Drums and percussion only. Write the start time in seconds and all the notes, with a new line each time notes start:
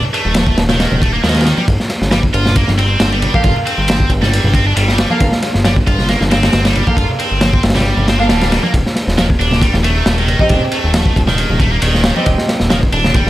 0.03 low conga
0.14 ride
0.34 snare, ride, high conga
0.47 kick
0.58 snare, ride
0.69 snare, ride, low conga
0.80 snare, ride
0.91 high conga, low conga
1.02 kick, ride
1.24 snare, ride
1.29 snare, ride
1.35 snare, ride
1.41 snare, ride
1.46 snare, ride
1.58 high conga
1.68 kick, ride
1.80 snare
1.90 snare, ride
2.02 snare
2.11 snare, ride, high conga
2.23 kick
2.34 ride
2.46 snare, low conga
2.56 kick, ride
2.68 snare, high conga
2.79 ride
3.00 snare, ride
3.12 ride
3.22 ride, low conga
3.34 kick, high conga
3.44 kick, ride
3.56 low conga
3.67 ride
3.88 snare, ride, high conga
4.00 kick
4.10 kick, ride
4.22 snare, low conga
4.33 ride
4.44 high conga, low conga
4.54 kick, ride
4.77 ride
4.88 snare
4.98 snare, ride
5.10 high conga
5.20 kick, ride
5.32 snare
5.42 snare, ride
5.54 snare
5.65 snare, ride, high conga
5.76 kick
5.87 kick, ride
5.99 snare, low conga
6.08 snare, ride
6.20 snare, high conga
6.31 snare, ride
6.43 snare, ride
6.53 snare, ride
6.65 snare, ride
6.75 ride, low conga
6.87 kick, high conga
6.97 kick, ride
7.10 low conga
7.20 ride
7.41 snare, ride, high conga
7.54 kick
7.63 snare, ride
7.70 snare, ride
7.75 snare, ride, low conga
7.80 snare, ride
7.97 high conga, low conga
8.08 snare, ride
8.29 snare, ride
8.41 snare, ride
8.52 snare, ride
8.63 high conga
8.74 kick, ride
8.86 snare
8.96 snare, ride
9.08 snare
9.18 snare, ride, high conga
9.30 kick
9.41 ride
9.51 snare, low conga
9.62 kick, ride
9.74 snare, high conga
9.84 ride
10.06 snare, ride
10.18 ride
10.28 ride, low conga
10.39 kick, high conga
10.49 kick, ride
10.61 low conga
10.72 ride
10.94 snare, ride, high conga
11.06 kick
11.16 kick, ride
11.27 snare, low conga
11.38 ride
11.50 high conga, low conga
11.60 kick, ride
11.82 ride
11.95 snare
12.04 snare, ride
12.16 high conga
12.26 kick, ride
12.38 snare
12.49 snare, ride
12.60 snare
12.70 snare, ride, high conga
12.83 kick
12.92 ride
13.04 snare, low conga
13.14 kick, ride